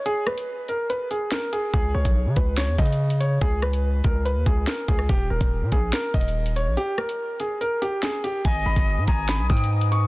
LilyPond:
<<
  \new Staff \with { instrumentName = "Flute" } { \time 4/4 \key gis \minor \tempo 4 = 143 r1 | r1 | r1 | r1 |
r1 | dis''4. gis''4 g''8 r4 | }
  \new Staff \with { instrumentName = "Flute section" } { \time 4/4 \key gis \minor r1 | r1 | r1 | r1 |
r1 | <b' dis'' gis'' dis'''>1 | }
  \new Staff \with { instrumentName = "Grand piano" } { \time 4/4 \key gis \minor gis'8 b'4 ais'8 b'8 gis'8 ais'8 gis'8 | gis'8 cis''4 b'8 cis''8 dis''4 cis''8 | gis'8 b'4 ais'8 b'8 gis'8 ais'8 gis'8 | g'8 ais'4 gis'8 ais'8 dis''4 cis''8 |
g'8 ais'4 gis'8 ais'8 g'8 gis'8 g'8 | gis''8 b''4 ais''8 b''8 dis'''4 cis'''8 | }
  \new Staff \with { instrumentName = "808-style bass" } { \clef bass \time 4/4 \key gis \minor r1 | cis,8 cis,16 b,,8 cis16 cis,8. e,16 cis4. | cis,4. cis,8. dis,16 cis,8 r8 cis,8 | dis,,8 dis,,16 dis,,8 ais,16 ais,,8 r8 dis,,4~ dis,,16 ais,,16 |
r1 | gis,,8 gis,,16 g,,8 gis,16 gis,,8. b,,16 gis,4. | }
  \new DrumStaff \with { instrumentName = "Drums" } \drummode { \time 4/4 hh8 ss16 hh16 r8 hh8 hh8 hh8 sn8 hh8 | <hh bd>8. <hh bd>16 r8 <hh bd>8 \tuplet 3/2 { <hh sn>16 r16 r16 <hh bd>16 hh16 hh16 } r16 hh16 hh8 | <hh bd>8 ss16 hh16 r8 <hh bd>8 hh8 <hh bd>8 sn8 <hh bd>16 ss16 | <hh bd>8. <hh bd>16 r8 <hh bd>8 \tuplet 3/2 { <hh sn>16 r16 r16 <hh bd>16 hh16 hh16 } r16 hh16 hh8 |
hh8 ss16 hh16 r8 hh8 hh8 hh8 sn8 hh8 | <hh bd>8. <hh bd>16 r8 <hh bd>8 \tuplet 3/2 { <hh sn>16 r16 r16 <hh bd>16 hh16 hh16 } r16 hh16 hh8 | }
>>